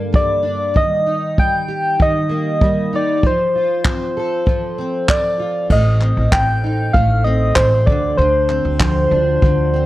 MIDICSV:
0, 0, Header, 1, 5, 480
1, 0, Start_track
1, 0, Tempo, 619195
1, 583, Time_signature, 4, 2, 24, 8
1, 7643, End_track
2, 0, Start_track
2, 0, Title_t, "Soft synth lead"
2, 0, Program_c, 0, 80
2, 121, Note_on_c, 0, 74, 92
2, 598, Note_on_c, 0, 75, 103
2, 609, Note_off_c, 0, 74, 0
2, 1080, Note_on_c, 0, 79, 98
2, 1092, Note_off_c, 0, 75, 0
2, 1569, Note_on_c, 0, 75, 103
2, 1581, Note_off_c, 0, 79, 0
2, 2290, Note_on_c, 0, 74, 82
2, 2302, Note_off_c, 0, 75, 0
2, 2531, Note_on_c, 0, 72, 80
2, 2542, Note_off_c, 0, 74, 0
2, 3947, Note_off_c, 0, 72, 0
2, 3952, Note_on_c, 0, 74, 79
2, 4396, Note_off_c, 0, 74, 0
2, 4439, Note_on_c, 0, 75, 83
2, 4900, Note_on_c, 0, 79, 86
2, 4911, Note_off_c, 0, 75, 0
2, 5377, Note_on_c, 0, 77, 90
2, 5389, Note_off_c, 0, 79, 0
2, 5617, Note_on_c, 0, 75, 85
2, 5628, Note_off_c, 0, 77, 0
2, 5857, Note_on_c, 0, 72, 85
2, 5868, Note_off_c, 0, 75, 0
2, 6097, Note_on_c, 0, 74, 81
2, 6109, Note_off_c, 0, 72, 0
2, 6332, Note_off_c, 0, 74, 0
2, 6337, Note_on_c, 0, 72, 98
2, 7643, Note_off_c, 0, 72, 0
2, 7643, End_track
3, 0, Start_track
3, 0, Title_t, "Steel-string acoustic guitar"
3, 0, Program_c, 1, 25
3, 0, Note_on_c, 1, 43, 62
3, 0, Note_on_c, 1, 50, 63
3, 0, Note_on_c, 1, 55, 55
3, 0, Note_on_c, 1, 58, 54
3, 0, Note_on_c, 1, 62, 52
3, 0, Note_on_c, 1, 69, 56
3, 95, Note_off_c, 1, 55, 0
3, 98, Note_on_c, 1, 55, 65
3, 325, Note_off_c, 1, 62, 0
3, 334, Note_on_c, 1, 62, 54
3, 420, Note_off_c, 1, 50, 0
3, 576, Note_on_c, 1, 51, 72
3, 627, Note_off_c, 1, 62, 0
3, 630, Note_off_c, 1, 43, 0
3, 635, Note_off_c, 1, 69, 0
3, 826, Note_on_c, 1, 63, 54
3, 1071, Note_off_c, 1, 55, 0
3, 1074, Note_on_c, 1, 55, 56
3, 1306, Note_on_c, 1, 67, 58
3, 1539, Note_off_c, 1, 51, 0
3, 1547, Note_on_c, 1, 51, 67
3, 1776, Note_off_c, 1, 58, 0
3, 1779, Note_on_c, 1, 58, 55
3, 2019, Note_off_c, 1, 55, 0
3, 2028, Note_on_c, 1, 55, 62
3, 2260, Note_off_c, 1, 63, 0
3, 2270, Note_on_c, 1, 63, 55
3, 2505, Note_off_c, 1, 55, 0
3, 2512, Note_on_c, 1, 53, 73
3, 2549, Note_off_c, 1, 58, 0
3, 2552, Note_off_c, 1, 67, 0
3, 2553, Note_off_c, 1, 51, 0
3, 2554, Note_off_c, 1, 63, 0
3, 2754, Note_on_c, 1, 65, 47
3, 2999, Note_on_c, 1, 60, 52
3, 3232, Note_on_c, 1, 69, 60
3, 3449, Note_off_c, 1, 53, 0
3, 3458, Note_on_c, 1, 53, 64
3, 3703, Note_off_c, 1, 60, 0
3, 3706, Note_on_c, 1, 60, 54
3, 3948, Note_off_c, 1, 60, 0
3, 3951, Note_on_c, 1, 60, 60
3, 4175, Note_off_c, 1, 65, 0
3, 4184, Note_on_c, 1, 65, 53
3, 4428, Note_off_c, 1, 53, 0
3, 4431, Note_on_c, 1, 57, 68
3, 4471, Note_off_c, 1, 65, 0
3, 4660, Note_off_c, 1, 60, 0
3, 4663, Note_on_c, 1, 60, 52
3, 4902, Note_off_c, 1, 60, 0
3, 4905, Note_on_c, 1, 60, 55
3, 5147, Note_on_c, 1, 63, 54
3, 5171, Note_off_c, 1, 69, 0
3, 5377, Note_off_c, 1, 57, 0
3, 5380, Note_on_c, 1, 57, 67
3, 5614, Note_off_c, 1, 60, 0
3, 5618, Note_on_c, 1, 60, 58
3, 5864, Note_off_c, 1, 60, 0
3, 5867, Note_on_c, 1, 60, 60
3, 6120, Note_on_c, 1, 50, 73
3, 6153, Note_off_c, 1, 63, 0
3, 6347, Note_off_c, 1, 50, 0
3, 6350, Note_on_c, 1, 50, 83
3, 6373, Note_off_c, 1, 60, 0
3, 6587, Note_on_c, 1, 60, 53
3, 6827, Note_off_c, 1, 57, 0
3, 6830, Note_on_c, 1, 53, 60
3, 7070, Note_on_c, 1, 62, 56
3, 7307, Note_off_c, 1, 50, 0
3, 7310, Note_on_c, 1, 50, 76
3, 7538, Note_off_c, 1, 60, 0
3, 7547, Note_on_c, 1, 60, 63
3, 7643, Note_off_c, 1, 50, 0
3, 7643, Note_off_c, 1, 53, 0
3, 7643, Note_off_c, 1, 60, 0
3, 7643, Note_off_c, 1, 62, 0
3, 7643, End_track
4, 0, Start_track
4, 0, Title_t, "Upright bass"
4, 0, Program_c, 2, 32
4, 4421, Note_on_c, 2, 33, 90
4, 4753, Note_off_c, 2, 33, 0
4, 4784, Note_on_c, 2, 33, 91
4, 4894, Note_off_c, 2, 33, 0
4, 4898, Note_on_c, 2, 33, 76
4, 5349, Note_off_c, 2, 33, 0
4, 5382, Note_on_c, 2, 33, 81
4, 5831, Note_off_c, 2, 33, 0
4, 5860, Note_on_c, 2, 33, 78
4, 6082, Note_off_c, 2, 33, 0
4, 6103, Note_on_c, 2, 38, 74
4, 6323, Note_off_c, 2, 38, 0
4, 6342, Note_on_c, 2, 38, 94
4, 6673, Note_off_c, 2, 38, 0
4, 6704, Note_on_c, 2, 38, 87
4, 7035, Note_off_c, 2, 38, 0
4, 7064, Note_on_c, 2, 38, 91
4, 7284, Note_off_c, 2, 38, 0
4, 7302, Note_on_c, 2, 38, 94
4, 7643, Note_off_c, 2, 38, 0
4, 7643, End_track
5, 0, Start_track
5, 0, Title_t, "Drums"
5, 109, Note_on_c, 9, 36, 111
5, 187, Note_off_c, 9, 36, 0
5, 590, Note_on_c, 9, 36, 90
5, 667, Note_off_c, 9, 36, 0
5, 1071, Note_on_c, 9, 36, 98
5, 1148, Note_off_c, 9, 36, 0
5, 1550, Note_on_c, 9, 36, 94
5, 1628, Note_off_c, 9, 36, 0
5, 2026, Note_on_c, 9, 36, 102
5, 2103, Note_off_c, 9, 36, 0
5, 2505, Note_on_c, 9, 36, 92
5, 2583, Note_off_c, 9, 36, 0
5, 2984, Note_on_c, 9, 36, 103
5, 2984, Note_on_c, 9, 39, 90
5, 3061, Note_off_c, 9, 36, 0
5, 3061, Note_off_c, 9, 39, 0
5, 3463, Note_on_c, 9, 36, 90
5, 3541, Note_off_c, 9, 36, 0
5, 3943, Note_on_c, 9, 36, 99
5, 3944, Note_on_c, 9, 39, 106
5, 4020, Note_off_c, 9, 36, 0
5, 4022, Note_off_c, 9, 39, 0
5, 4421, Note_on_c, 9, 49, 86
5, 4422, Note_on_c, 9, 36, 93
5, 4498, Note_off_c, 9, 49, 0
5, 4499, Note_off_c, 9, 36, 0
5, 4663, Note_on_c, 9, 39, 62
5, 4740, Note_off_c, 9, 39, 0
5, 4902, Note_on_c, 9, 36, 104
5, 4906, Note_on_c, 9, 39, 101
5, 4910, Note_off_c, 9, 39, 0
5, 4910, Note_on_c, 9, 39, 60
5, 4980, Note_off_c, 9, 36, 0
5, 4987, Note_off_c, 9, 39, 0
5, 5383, Note_on_c, 9, 36, 103
5, 5461, Note_off_c, 9, 36, 0
5, 5860, Note_on_c, 9, 39, 112
5, 5862, Note_on_c, 9, 36, 112
5, 5868, Note_off_c, 9, 39, 0
5, 5868, Note_on_c, 9, 39, 77
5, 5940, Note_off_c, 9, 36, 0
5, 5946, Note_off_c, 9, 39, 0
5, 6103, Note_on_c, 9, 36, 94
5, 6180, Note_off_c, 9, 36, 0
5, 6586, Note_on_c, 9, 39, 61
5, 6663, Note_off_c, 9, 39, 0
5, 6823, Note_on_c, 9, 36, 104
5, 6823, Note_on_c, 9, 39, 62
5, 6824, Note_off_c, 9, 39, 0
5, 6824, Note_on_c, 9, 39, 98
5, 6901, Note_off_c, 9, 36, 0
5, 6901, Note_off_c, 9, 39, 0
5, 7305, Note_on_c, 9, 36, 98
5, 7382, Note_off_c, 9, 36, 0
5, 7643, End_track
0, 0, End_of_file